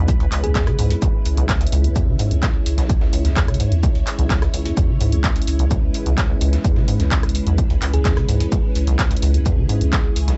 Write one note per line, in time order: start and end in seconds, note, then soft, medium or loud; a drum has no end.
0.00 0.11 E2 medium
0.00 10.37 G#3 medium
0.00 10.37 C#4 medium
0.00 10.37 E4 medium
0.00 1.94 B4 medium
0.08 0.18 C#2 medium
0.08 kick loud
0.08 closed hi-hat medium
0.08 shaker medium
0.20 0.27 C#2 loud
0.20 0.27 C#2 medium
0.20 closed hi-hat soft
0.32 0.45 C#2 medium
0.32 clap medium
0.32 open hi-hat loud
0.32 shaker medium
0.44 0.72 C#2 medium
0.44 0.50 E2 medium
0.44 0.51 G#4 medium
0.44 closed hi-hat soft
0.55 0.68 E2 medium
0.55 0.63 G#4 medium
0.55 kick loud
0.55 snare loud
0.55 clap loud
0.55 closed hi-hat medium
0.55 shaker medium
0.67 0.77 C#3 loud
0.67 cross-stick medium
0.67 closed hi-hat soft
0.79 0.93 C#2 medium
0.79 0.92 G#2 medium
0.79 open hi-hat loud
0.79 shaker medium
0.90 0.97 E2 medium
0.90 closed hi-hat medium
0.90 closed hi-hat soft
1.02 1.09 G#1 medium
1.02 1.09 C#2 loud
1.02 kick loud
1.02 closed hi-hat medium
1.02 shaker medium
1.25 1.65 C#2 medium
1.25 open hi-hat loud
1.25 shaker medium
1.37 1.50 B1 loud
1.37 closed hi-hat medium
1.49 1.59 C#2 medium
1.49 kick loud
1.49 snare loud
1.49 clap loud
1.49 closed hi-hat medium
1.49 shaker medium
1.61 1.67 C#2 medium
1.61 closed hi-hat soft
1.67 closed hi-hat medium
1.72 1.86 C#2 medium
1.72 2.00 C#2 medium
1.72 open hi-hat loud
1.72 shaker medium
1.84 1.91 E2 medium
1.84 closed hi-hat soft
1.96 2.09 E2 medium
1.96 5.69 C#5 medium
1.96 kick loud
1.96 closed hi-hat medium
1.96 shaker medium
2.08 2.15 C#2 medium
2.08 2.17 C#3 loud
2.19 2.32 G#2 medium
2.19 open hi-hat loud
2.19 shaker medium
2.31 2.59 C#2 medium
2.31 2.37 E2 medium
2.31 closed hi-hat soft
2.43 2.49 C#2 medium
2.43 kick loud
2.43 snare loud
2.43 clap loud
2.43 closed hi-hat medium
2.43 shaker medium
2.66 2.81 C#2 medium
2.66 open hi-hat loud
2.66 shaker medium
2.78 2.91 B1 loud
2.78 snare medium
2.78 closed hi-hat medium
2.89 3.18 G#1 medium
2.89 2.99 C#2 medium
2.89 kick loud
2.89 closed hi-hat medium
2.89 shaker medium
3.01 3.08 C#2 medium
3.01 snare soft
3.13 3.26 C#2 medium
3.13 open hi-hat loud
3.13 shaker medium
3.25 3.65 C#2 medium
3.25 3.31 E2 medium
3.25 snare soft
3.25 closed hi-hat medium
3.36 3.50 E2 medium
3.36 kick loud
3.36 snare loud
3.36 clap loud
3.36 closed hi-hat medium
3.36 shaker medium
3.48 3.58 C#3 loud
3.48 cross-stick medium
3.48 closed hi-hat soft
3.54 closed hi-hat medium
3.60 3.73 G#2 medium
3.60 open hi-hat loud
3.60 shaker medium
3.72 3.86 E2 loud
3.72 3.78 E2 medium
3.72 closed hi-hat soft
3.83 3.90 C#2 loud
3.83 kick loud
3.83 closed hi-hat medium
3.83 shaker medium
3.95 4.02 C#2 loud
3.95 closed hi-hat soft
4.07 clap medium
4.07 open hi-hat loud
4.07 shaker medium
4.19 4.32 B1 loud
4.19 4.47 C#2 medium
4.19 closed hi-hat soft
4.30 4.40 C#2 medium
4.30 kick loud
4.30 snare loud
4.30 clap loud
4.30 closed hi-hat medium
4.30 shaker medium
4.42 4.48 C#2 medium
4.42 cross-stick medium
4.42 closed hi-hat soft
4.54 4.68 C#2 medium
4.54 4.67 C#2 medium
4.54 open hi-hat loud
4.54 shaker medium
4.65 4.72 E2 medium
4.65 closed hi-hat soft
4.77 4.84 G#1 medium
4.77 4.90 E2 medium
4.77 kick loud
4.77 closed hi-hat medium
4.77 shaker medium
4.89 4.99 C#3 medium
5.00 5.40 C#2 medium
5.00 5.14 G#2 medium
5.00 open hi-hat loud
5.00 shaker medium
5.12 5.19 E2 medium
5.12 closed hi-hat medium
5.24 5.31 C#2 loud
5.24 kick loud
5.24 snare loud
5.24 clap loud
5.24 closed hi-hat medium
5.24 shaker medium
5.36 closed hi-hat soft
5.42 closed hi-hat medium
5.47 5.75 C#2 medium
5.47 open hi-hat loud
5.47 shaker medium
5.59 5.66 B1 loud
5.59 closed hi-hat soft
5.71 5.77 C#2 loud
5.71 9.44 B4 medium
5.71 kick loud
5.71 closed hi-hat medium
5.71 shaker medium
5.83 5.90 C#2 loud
5.94 open hi-hat loud
5.94 shaker medium
6.06 6.19 B1 loud
6.06 6.34 C#2 medium
6.06 closed hi-hat soft
6.18 6.27 C#2 medium
6.18 kick loud
6.18 snare loud
6.18 clap loud
6.18 closed hi-hat medium
6.18 shaker medium
6.29 6.36 C#2 medium
6.41 6.54 C#2 medium
6.41 6.56 C#2 medium
6.41 open hi-hat loud
6.41 shaker medium
6.53 6.59 E2 medium
6.53 snare medium
6.53 closed hi-hat medium
6.65 6.93 G#1 medium
6.65 6.78 E2 medium
6.65 kick loud
6.65 closed hi-hat medium
6.65 shaker medium
6.76 6.86 C#3 loud
6.76 snare soft
6.88 7.01 G#2 medium
6.88 open hi-hat loud
6.88 shaker medium
7.00 7.39 C#2 medium
7.00 7.06 E2 medium
7.00 snare soft
7.00 closed hi-hat soft
7.11 7.18 C#2 medium
7.11 kick loud
7.11 snare loud
7.11 clap loud
7.11 closed hi-hat medium
7.11 shaker medium
7.23 cross-stick medium
7.23 closed hi-hat soft
7.29 closed hi-hat medium
7.35 open hi-hat loud
7.35 shaker medium
7.47 7.60 B1 medium
7.47 7.61 E2 loud
7.47 closed hi-hat soft
7.58 7.68 C#2 medium
7.58 kick loud
7.58 closed hi-hat medium
7.58 shaker medium
7.70 7.77 C#2 loud
7.70 7.77 C#2 medium
7.70 closed hi-hat soft
7.82 7.95 C#2 medium
7.82 clap medium
7.82 open hi-hat loud
7.82 shaker medium
7.93 8.21 C#2 medium
7.93 8.00 E2 medium
7.93 8.01 G#4 medium
7.93 closed hi-hat soft
8.05 8.18 E2 medium
8.05 8.13 G#4 medium
8.05 kick loud
8.05 snare loud
8.05 clap loud
8.05 closed hi-hat medium
8.05 shaker medium
8.17 8.27 C#3 loud
8.17 cross-stick medium
8.17 closed hi-hat soft
8.29 8.43 C#2 medium
8.29 8.42 G#2 medium
8.29 open hi-hat loud
8.29 shaker medium
8.40 8.47 E2 medium
8.40 closed hi-hat soft
8.40 closed hi-hat medium
8.52 8.59 G#1 medium
8.52 8.59 C#2 loud
8.52 kick loud
8.52 closed hi-hat medium
8.52 shaker medium
8.75 9.15 C#2 medium
8.75 open hi-hat medium
8.75 shaker medium
8.87 9.01 B1 loud
8.87 closed hi-hat medium
8.99 9.09 C#2 medium
8.99 kick loud
8.99 snare loud
8.99 clap loud
8.99 closed hi-hat medium
8.99 shaker medium
9.11 9.17 C#2 medium
9.11 closed hi-hat soft
9.17 closed hi-hat medium
9.22 9.36 C#2 medium
9.22 9.50 C#2 medium
9.22 open hi-hat loud
9.22 shaker medium
9.34 9.41 E2 medium
9.34 closed hi-hat soft
9.46 9.59 E2 medium
9.46 10.37 G#4 loud
9.46 kick loud
9.46 closed hi-hat medium
9.46 shaker medium
9.58 9.65 C#2 loud
9.58 9.67 C#3 loud
9.69 9.82 G#2 medium
9.69 open hi-hat loud
9.69 shaker medium
9.81 10.09 C#2 medium
9.81 9.87 E2 medium
9.81 closed hi-hat medium
9.93 9.99 C#2 loud
9.93 kick loud
9.93 snare loud
9.93 clap loud
9.93 closed hi-hat medium
9.93 shaker medium
10.16 10.31 C#2 medium
10.16 open hi-hat loud
10.16 shaker medium
10.28 10.37 B1 medium
10.28 snare soft
10.28 closed hi-hat medium